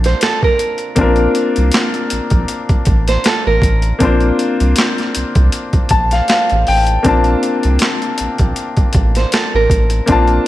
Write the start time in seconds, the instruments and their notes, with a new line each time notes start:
Already playing: analog synth bass A#1, grand piano A#3 C4 D4 F4 A5
0.04 nylon-string guitar C5, snare, closed hi-hat
0.21 nylon-string guitar A4, snare, clap, closed hi-hat
0.43 nylon-string guitar A#4, kick
0.59 closed hi-hat
0.78 closed hi-hat
0.95 analog synth bass A#1, grand piano A#3 C4 D4, kick, closed hi-hat
0.99 grand piano F4 A#4
1.16 closed hi-hat
1.35 closed hi-hat
1.56 analog synth bass C2, closed hi-hat
1.72 snare, clap, closed hi-hat
1.94 closed hi-hat
2.10 analog synth bass A#1, closed hi-hat
2.30 analog synth bass A#1, kick, closed hi-hat
2.48 closed hi-hat
2.69 analog synth bass A1, kick, closed hi-hat
2.85 analog synth bass A1, kick, closed hi-hat
3.08 nylon-string guitar C5, snare, closed hi-hat
3.24 nylon-string guitar A4, snare, clap, closed hi-hat
3.47 analog synth bass A1, nylon-string guitar A#4
3.62 analog synth bass A1, kick, closed hi-hat
3.82 closed hi-hat
3.99 analog synth bass A#1, grand piano A#3 C4 D4, kick, closed hi-hat
4.03 grand piano F4 C5
4.20 closed hi-hat
4.39 closed hi-hat
4.60 analog synth bass C2, closed hi-hat
4.76 snare, clap, closed hi-hat
4.98 snare, closed hi-hat
5.15 analog synth bass C2, closed hi-hat
5.35 analog synth bass C2, kick, closed hi-hat
5.52 closed hi-hat
5.73 analog synth bass A#1, kick, closed hi-hat
5.89 analog synth bass A#1, grand piano A5, kick, closed hi-hat
6.11 grand piano F5, snare, closed hi-hat
6.28 grand piano F5, snare, clap, closed hi-hat
6.49 analog synth bass A1, closed hi-hat
6.67 analog synth bass A1, grand piano G5, open hi-hat
6.87 closed hi-hat
7.03 analog synth bass A#1, grand piano A#3 C4 D4, kick, closed hi-hat
7.07 grand piano F4 A5
7.24 closed hi-hat
7.43 closed hi-hat
7.63 analog synth bass C2, closed hi-hat
7.79 snare, clap, closed hi-hat
8.02 closed hi-hat
8.18 analog synth bass A#1, closed hi-hat
8.38 analog synth bass A#1, kick, closed hi-hat
8.56 closed hi-hat
8.77 analog synth bass A1, kick, closed hi-hat
8.93 analog synth bass A1, kick, closed hi-hat
9.15 nylon-string guitar C5, snare, closed hi-hat
9.32 nylon-string guitar A4, snare, clap, closed hi-hat
9.55 analog synth bass A1, nylon-string guitar A#4
9.70 analog synth bass A1, kick, closed hi-hat
9.90 closed hi-hat
10.06 analog synth bass A#1, grand piano A#3 C4 D4, kick, closed hi-hat
10.10 grand piano F4 A5
10.27 closed hi-hat